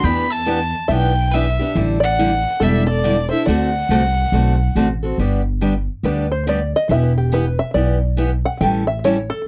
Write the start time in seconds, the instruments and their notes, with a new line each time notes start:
0.03 upright bass E2, steel-string acoustic guitar E3 B3 D4 G4, five-string banjo G5, violin B5
0.30 five-string banjo E5, violin A5
0.46 steel-string acoustic guitar E3 B3 D4 G4
0.88 upright bass B1, steel-string acoustic guitar E3 B3 D4 G4, five-string banjo E5, violin G5
1.31 steel-string acoustic guitar E3 B3 D4 G4, five-string banjo B4, violin E5
1.59 steel-string acoustic guitar B3 D4 G4
1.75 upright bass A1, steel-string acoustic guitar D3 G3 D4 E4 A4
2.00 five-string banjo D5, violin F#5
2.19 steel-string acoustic guitar D3 G3 D4 E4 A4
2.60 upright bass E1, steel-string acoustic guitar D3 G3 D4 E4 A4, five-string banjo A4, violin E5
2.87 five-string banjo A4, violin D5
3.04 steel-string acoustic guitar D3 G3 D4 E4 A4
3.29 steel-string acoustic guitar E4 A4, five-string banjo C5, violin E5
3.33 steel-string acoustic guitar D4
3.46 upright bass D2, steel-string acoustic guitar D3 A3 C4 F#4 A4, five-string banjo D5, violin F#5
3.89 upright bass C2, steel-string acoustic guitar D3 A3 C4 F#4 A4
4.32 upright bass B1, steel-string acoustic guitar D3 A3 C4 F#4 A4
4.75 upright bass A1, steel-string acoustic guitar D3 A3 C4 F#4 A4
5.03 steel-string acoustic guitar C4 F#4 A4
5.18 upright bass G1, steel-string acoustic guitar D3 G3 B3 D4 G4
5.61 steel-string acoustic guitar D3 G3 B3 D4 G4
6.03 upright bass D2, steel-string acoustic guitar D3 G3 B3 D4 G4, five-string banjo B4
6.32 five-string banjo C5
6.47 steel-string acoustic guitar D3 G3 B3 D4 G4, five-string banjo D5
6.76 five-string banjo D#5
6.89 upright bass E1, steel-string acoustic guitar E3 B3 E4 G4, five-string banjo E5
7.18 five-string banjo G4
7.32 steel-string acoustic guitar E3 B3 E4 G4, five-string banjo B4
7.59 five-string banjo E5
7.74 upright bass B1, steel-string acoustic guitar E3 B3 E4 G4, five-string banjo D5
8.17 steel-string acoustic guitar E3 B3 E4 G4
8.45 five-string banjo F#5
8.61 upright bass A1, steel-string acoustic guitar E3 G3 C#4 E4 A4, five-string banjo G5
8.87 five-string banjo E5
9.04 steel-string acoustic guitar E3 G3 C#4 E4 A4, five-string banjo C#5
9.30 five-string banjo A4